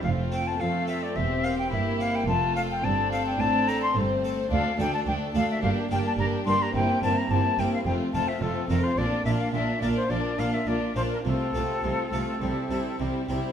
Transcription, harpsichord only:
X:1
M:4/4
L:1/8
Q:1/4=107
K:F
V:1 name="Harpsichord"
z [A,CF]2 [A,CF] z [B,CG]2 [B,CG] | z [A,CA]2 [A,CA] z [A,CA]2 [A,CA] | z [A,DA]2 [A,DA] z [B,DG]2 [B,DG] | z [B,CE]2 [B,CE] z [A,CF]2 [A,CF] |
z [B,DF]2 [B,DF] z [B,DF]2 [B,DF] | z [A,CF]2 [A,CF] z [CE]2 [CE] |]
V:2 name="Harpsichord" clef=bass
F,,2 F,2 E,,2 G,,2 | F,,2 G,,2 A,,2 G,,2 | D,, D,, D,, D,, G,, G,, G,, G,, | G,, G,, G,, G,, F,, F,, F,, F,, |
B,, B,, B,, B,, B,, B,, B,, B,, | C, C, C, C, C, C, C, C, |]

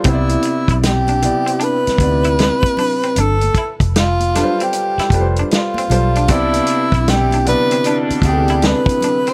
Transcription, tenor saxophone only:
X:1
M:4/4
L:1/16
Q:"Swing 16ths" 1/4=77
K:C
V:1 name="Tenor saxophone"
E4 G4 B8 | A3 z F3 G4 z F4 | E4 G2 B3 z G2 B3 c |]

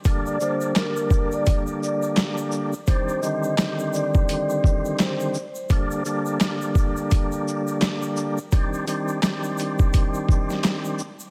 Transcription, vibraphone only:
X:1
M:4/4
L:1/16
Q:"Swing 16ths" 1/4=85
K:Gm
V:1 name="Vibraphone"
z d c2 B3 d z2 d z4 z | c2 e4 d6 c2 z2 | z16 | z16 |]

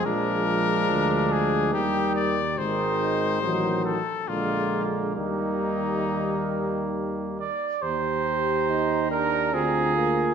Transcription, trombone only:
X:1
M:3/4
L:1/8
Q:1/4=70
K:Eb
V:1 name="Trombone" clef=bass
F,4 E,2 | E,2 E, z D,2 | E,4- E, z | z2 E D C B, |]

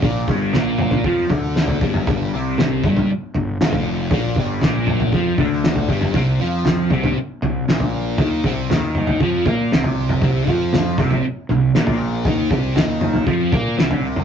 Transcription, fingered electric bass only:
X:1
M:4/4
L:1/8
Q:1/4=118
K:Bb
V:1 name="Fingered electric bass" clef=bass
B,,, G,,, B,,,2 F,, D,,2 G,,, | G,,, C,,2 G,,, z G,,, F,,,2 | B,,, G,,, B,,,2 F,, D,,2 G,,, | C,, F,,2 C,, z C,, B,,,2 |
E,, C,, E,,2 F,, B,, C,,2 | C,, F,,2 C,, z C,, B,,,2 | E,, C,, E,,2 F,, B,, C,,2 |]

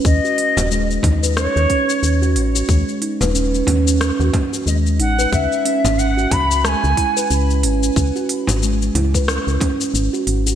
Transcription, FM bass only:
X:1
M:4/4
L:1/16
Q:"Swing 16ths" 1/4=91
K:C#m
V:1 name="FM bass" clef=bass
D,, z2 D,,,3 D,,3 D,, z2 D,,2 A,,,2 | D,, z2 D,,,3 D,,3 D,, z2 D,,2 A,,,2 | C,, z2 G,,,3 C,,3 C,, z2 C,,2 G,,,2 | C,, z2 G,,,3 C,,3 C,, z2 G,,, z G,,,2 |]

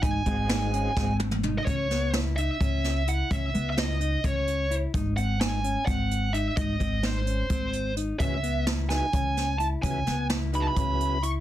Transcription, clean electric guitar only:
X:1
M:7/8
L:1/8
Q:1/4=129
K:C#m
V:1 name="Clean electric guitar"
D ^B, D C B,2 D | C B, E D C2 E | C B, E D C2 E | D ^B, D C B,2 D |
D ^B, D C B,2 D | C B, E D C2 E | C B, E D C2 E |]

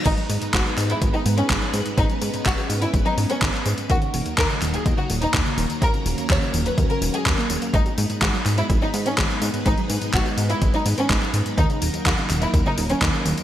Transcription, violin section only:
X:1
M:4/4
L:1/16
Q:1/4=125
K:G#m
V:1 name="Violin section"
D3 z F2 z E z D z C2 z3 | D3 z F2 z E z D z C2 z3 | F3 z A2 z G z F z D2 z3 | A3 z c2 z B z A z G2 z3 |
D3 z F2 z E z D z C2 z3 | D3 z F2 z E z D z C2 z3 | D3 z F2 z E z D z C2 z3 |]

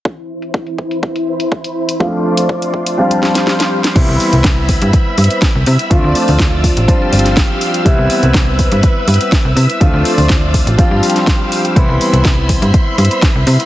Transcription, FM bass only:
X:1
M:4/4
L:1/16
Q:1/4=123
K:C
V:1 name="FM bass" clef=bass
z16 | z16 | C,, C,, z C,, z3 G,, z2 G,, z2 C,, C, z | D,, D,, z D,, z3 A,,, z G,,, G,,,3 z3 |
C,, C,, z C,, C,,3 G,, z2 G,, z2 C,, C, z | D,, D,, z D,, D,,3 A,,, z G,, z6 | C,, C,, z C,, z3 G,, z2 G,, z2 C,, C, z |]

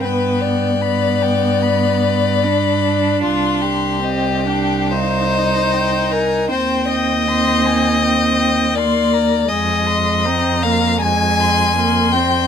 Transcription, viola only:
X:1
M:4/4
L:1/8
Q:1/4=78
K:Cm
V:1 name="Viola"
=B,2 B,4 D2- | D2 C D E4 | C2 C2 C2 B,2 | A,2 C B, A,2 B, C |]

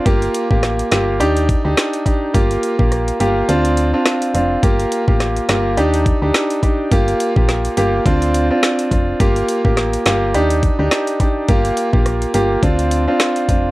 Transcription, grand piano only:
X:1
M:4/4
L:1/16
Q:"Swing 16ths" 1/4=105
K:Gm
V:1 name="Grand piano"
[B,FG]3 [B,FG]3 [B,FG]2 [DEG]3 [DEG]3 [DEG]2 | [B,FG]3 [B,FG]3 [B,FG]2 [CDF]3 [CDF]3 [CDF]2 | [B,FG]3 [B,FG]3 [B,FG]2 [DEG]3 [DEG]3 [DEG]2 | [B,FG]3 [B,FG]3 [B,FG]2 [CDF]3 [CDF]3 [CDF]2 |
[B,FG]3 [B,FG]3 [B,FG]2 [DEG]3 [DEG]3 [DEG]2 | [B,FG]3 [B,FG]3 [B,FG]2 [CDF]3 [CDF]3 [CDF]2 |]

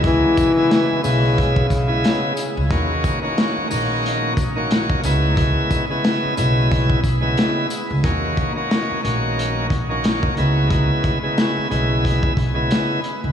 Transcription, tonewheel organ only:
X:1
M:4/4
L:1/16
Q:"Swing 16ths" 1/4=90
K:Dbdor
V:1 name="Tonewheel organ"
[D,A,CF]3 [D,A,CF]3 [D,A,CF]4 z [D,A,CF]3 z2 | [E,B,DG]3 [E,B,DG]3 [E,B,DG]4 z [E,B,DG]3 [D,A,CF]2 | [D,A,CF]3 [D,A,CF]3 [D,A,CF]4 z [D,A,CF]3 z2 | [E,B,DG]3 [E,B,DG]3 [E,B,DG]4 z [E,B,DG]3 [D,A,CF]2 |
[D,A,CF]3 [D,A,CF]3 [D,A,CF]4 z [D,A,CF]3 z2 |]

